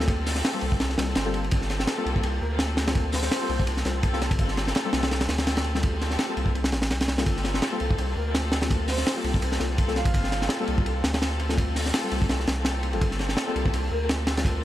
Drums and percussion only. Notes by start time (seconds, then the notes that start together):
0.00 snare
0.08 kick, ride
0.26 snare, open hi-hat
0.35 snare
0.45 snare, ride
0.61 ride
0.72 kick
0.80 snare, ride
0.90 snare
0.98 snare, ride
1.15 snare, ride
1.34 ride
1.44 ride
1.51 kick, ride
1.62 snare
1.70 snare, ride
1.80 snare
1.87 snare, ride
2.06 ride
2.16 kick
2.23 ride
2.59 snare, ride
2.77 snare, ride
2.87 snare, ride
2.95 kick, ride
3.12 snare, open hi-hat
3.22 snare
3.31 snare, ride
3.50 ride
3.60 kick
3.67 ride
3.77 snare
3.85 snare, ride
4.03 kick, ride
4.13 snare
4.21 snare, ride
4.31 kick, ride
4.39 kick, ride
4.48 snare
4.57 snare, ride
4.67 snare
4.75 snare, ride
4.93 snare, ride
5.03 snare, ride
5.11 snare, ride
5.21 snare, ride
5.29 snare, ride
5.38 snare, ride
5.47 snare, ride
5.57 snare, ride
5.64 ride
5.75 snare
5.83 kick, ride
6.01 snare, ride
6.11 snare
6.19 snare, ride
6.37 ride
6.46 kick
6.55 ride
6.64 snare, ride
6.72 snare, ride
6.82 snare, ride
6.90 snare, ride
7.01 snare, ride
7.08 snare, ride
7.18 snare, ride
7.26 kick, ride
7.37 snare
7.44 snare, ride
7.54 snare
7.62 snare, ride
7.80 ride
7.91 kick
7.98 ride
8.35 snare, ride
8.52 snare, ride
8.62 snare, ride
8.71 kick, ride
8.88 snare, open hi-hat
8.98 snare
9.06 snare, ride
9.24 ride
9.34 kick
9.42 ride
9.52 snare
9.60 snare, ride
9.78 kick, ride
9.88 snare
9.96 snare, ride
10.05 kick, ride
10.14 kick, ride
10.24 snare
10.32 snare, ride
10.42 snare
10.49 snare, ride
10.67 ride
10.78 kick
10.86 ride
11.04 snare, ride
11.14 snare, ride
11.22 snare, ride
11.40 ride
11.49 snare
11.58 kick, ride
11.75 snare, open hi-hat
11.86 snare
11.94 snare, ride
12.11 ride
12.22 kick
12.29 snare, ride
12.40 snare
12.47 snare, ride
12.65 snare, ride
12.83 ride
12.93 ride
13.01 kick, ride
13.11 snare
13.19 snare, ride
13.29 snare
13.37 snare, ride
13.56 ride
13.66 kick
13.73 ride
14.09 snare, ride
14.27 snare, ride
14.37 snare, ride
14.45 kick, ride